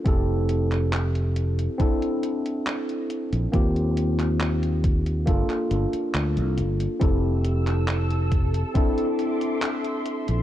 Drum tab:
HH |x-xxxxxxxxxxxxxx|xxxxxxxxxxxxxxxx|x-xxxxxxxxxxxxxx|
CP |---xx-------x---|---xx----x--x---|---xx-------x---|
BD |o-------o-------|o-----o-o-------|o-----o-o-------|